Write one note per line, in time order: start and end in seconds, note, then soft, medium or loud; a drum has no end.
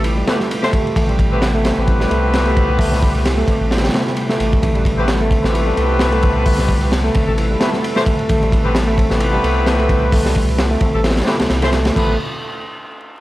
0.00 0.23 A1 loud
0.00 11.92 C3 medium
0.00 0.17 G3 medium
0.00 0.28 A3 loud
0.00 1.65 C4 medium
0.00 0.05 E4 medium
0.00 4.61 G4 medium
0.00 11.92 B4 medium
0.04 0.16 E4 medium
0.04 ride medium
0.17 0.27 G3 medium
0.28 0.36 A3 medium
0.28 0.39 A3 medium
0.28 0.36 B3 medium
0.28 0.36 C4 medium
0.28 0.36 G4 medium
0.28 0.36 B4 medium
0.28 snare loud
0.28 ride medium
0.40 snare soft
0.51 ride medium
0.63 0.69 A3 loud
0.63 0.69 C4 medium
0.63 0.69 G4 medium
0.63 0.69 C5 loud
0.63 snare medium
0.73 kick loud
0.73 ride medium
0.87 ride soft
0.96 1.72 A1 loud
0.96 1.08 A3 medium
0.96 kick loud
0.96 ride medium
1.09 1.19 G3 medium
1.09 ride soft
1.19 kick medium
1.19 ride medium
1.32 1.42 A3 medium
1.32 1.42 B3 medium
1.32 1.42 C4 medium
1.32 1.42 G4 medium
1.32 1.42 B4 loud
1.42 snare loud
1.42 ride medium
1.55 1.60 A3 loud
1.65 1.72 C4 medium
1.65 snare loud
1.65 ride medium
1.78 2.06 A1 loud
1.78 3.12 A3 loud
1.78 3.12 B3 loud
1.78 3.12 C4 loud
1.78 3.12 G4 loud
1.78 3.12 B4 loud
1.88 1.99 E4 medium
1.88 kick medium
1.88 ride medium
2.00 2.10 G3 medium
2.00 snare soft
2.11 3.44 C2 loud
2.11 2.22 A3 medium
2.11 ride medium
2.34 snare loud
2.34 ride medium
2.45 2.52 A3 loud
2.45 ride soft
2.57 kick loud
2.57 ride medium
2.79 2.91 A3 medium
2.79 kick loud
2.79 open hi-hat medium
2.92 3.02 G3 medium
2.92 snare soft
3.02 kick loud
3.02 ride medium
3.15 3.25 A3 medium
3.15 3.25 B3 medium
3.15 3.25 C4 medium
3.15 3.25 G4 medium
3.15 3.25 B4 medium
3.15 ride soft
3.25 snare loud
3.25 ride loud
3.38 3.43 A3 loud
3.48 3.55 C4 medium
3.48 kick medium
3.48 ride medium
3.61 3.90 A1 loud
3.71 3.82 E4 medium
3.71 snare medium
3.71 ride medium
3.77 snare medium
3.77 ride medium
3.84 3.94 G3 medium
3.84 snare medium
3.84 ride medium
3.89 snare medium
3.89 ride medium
3.94 4.05 A3 medium
3.94 snare loud
3.94 ride medium
4.07 snare soft
4.17 ride medium
4.29 4.35 A3 loud
4.29 snare soft
4.40 4.57 A1 medium
4.40 ride medium
4.53 kick loud
4.63 5.39 A1 loud
4.63 4.74 A3 medium
4.63 11.94 A4 medium
4.63 kick loud
4.63 ride medium
4.75 4.85 G3 medium
4.75 ride soft
4.85 kick medium
4.85 ride medium
4.98 5.08 A3 medium
4.98 5.08 B3 medium
4.98 5.08 C4 medium
4.98 5.08 G4 medium
4.98 5.08 B4 loud
5.08 snare loud
5.08 ride medium
5.21 5.27 A3 loud
5.31 5.38 C4 medium
5.31 kick loud
5.31 ride medium
5.44 5.73 A1 loud
5.44 6.78 A3 loud
5.44 6.78 B3 loud
5.44 6.78 C4 medium
5.44 6.78 G4 medium
5.44 6.78 B4 loud
5.44 snare medium
5.54 5.66 E4 medium
5.54 ride medium
5.67 5.77 G3 medium
5.77 7.10 C2 loud
5.77 5.88 A3 medium
5.77 ride medium
5.99 snare loud
5.99 ride medium
6.12 6.18 A3 loud
6.12 ride soft
6.23 kick loud
6.23 ride medium
6.46 6.57 A3 medium
6.46 kick loud
6.46 open hi-hat medium
6.58 6.68 G3 medium
6.58 snare soft
6.68 kick medium
6.68 ride medium
6.81 6.92 A3 medium
6.81 6.92 B3 medium
6.81 6.92 C4 medium
6.81 6.92 G4 medium
6.81 6.92 B4 medium
6.81 ride soft
6.92 snare loud
6.92 ride medium
7.05 7.10 A3 loud
7.14 7.21 C4 medium
7.14 kick loud
7.14 ride medium
7.27 7.56 A1 loud
7.27 7.34 A3 medium
7.27 7.34 C4 medium
7.27 7.34 G4 medium
7.27 7.34 A4 medium
7.38 7.49 E4 medium
7.38 ride medium
7.50 7.60 G3 medium
7.60 7.72 A3 medium
7.60 7.68 A3 medium
7.60 7.68 B3 medium
7.60 7.68 C4 medium
7.60 7.68 G4 medium
7.60 7.68 B4 medium
7.60 snare loud
7.60 ride medium
7.73 snare soft
7.84 ride medium
7.96 8.02 A3 loud
7.96 8.01 A3 loud
7.96 8.02 C4 medium
7.96 8.02 G4 medium
7.96 8.02 C5 loud
7.96 snare medium
8.06 kick loud
8.06 ride medium
8.19 ride soft
8.29 9.05 A1 loud
8.29 8.40 A3 medium
8.29 kick loud
8.29 ride medium
8.42 8.52 G3 medium
8.42 ride soft
8.52 kick medium
8.52 ride medium
8.64 8.75 A3 medium
8.64 8.75 B3 medium
8.64 8.75 C4 medium
8.64 8.75 G4 medium
8.64 8.75 B4 loud
8.75 snare loud
8.75 ride medium
8.88 8.93 A3 loud
8.98 9.05 C4 medium
8.98 kick loud
8.98 ride medium
9.10 9.39 A1 loud
9.10 10.45 A3 loud
9.10 10.45 B3 loud
9.10 10.45 C4 loud
9.10 10.45 G4 loud
9.10 10.45 B4 loud
9.10 snare medium
9.20 9.32 E4 medium
9.20 ride medium
9.34 9.43 G3 medium
9.43 10.77 C2 loud
9.43 9.55 A3 medium
9.43 ride medium
9.67 snare loud
9.67 ride medium
9.79 9.85 A3 loud
9.79 ride soft
9.89 kick loud
9.89 ride medium
10.12 10.24 A3 medium
10.12 kick loud
10.12 open hi-hat medium
10.25 10.35 G3 medium
10.25 snare soft
10.35 kick loud
10.35 ride medium
10.49 ride soft
10.58 snare loud
10.58 ride medium
10.71 10.76 A3 loud
10.81 10.88 C4 medium
10.81 kick loud
10.81 ride medium
10.94 11.22 A1 loud
10.94 11.00 A3 medium
10.94 11.00 C4 medium
10.94 11.00 G4 medium
10.94 11.00 A4 medium
11.04 11.15 E4 medium
11.04 snare medium
11.04 ride medium
11.11 snare medium
11.11 ride medium
11.17 11.27 G3 medium
11.17 snare medium
11.17 ride medium
11.21 snare medium
11.21 ride medium
11.27 11.35 A3 medium
11.27 11.38 A3 medium
11.27 11.35 B3 medium
11.27 11.35 C4 medium
11.27 11.35 G4 medium
11.27 11.35 B4 medium
11.27 snare loud
11.27 ride medium
11.39 11.48 C2 soft
11.39 snare loud
11.39 ride medium
11.50 11.91 C2 loud
11.50 snare loud
11.50 ride medium
11.62 11.69 A3 loud
11.62 11.68 A3 loud
11.62 11.69 C4 medium
11.62 11.69 G4 medium
11.62 11.69 C5 loud
11.62 snare loud
11.62 ride medium
11.73 snare loud
11.73 ride medium
11.85 snare loud
11.85 ride medium
11.96 12.17 A1 loud
11.96 12.17 A3 medium
11.96 12.13 A3 medium
11.96 12.13 B3 medium
11.96 12.13 C4 medium
11.96 12.13 G4 medium
11.96 12.13 B4 medium
11.96 kick loud
11.96 crash medium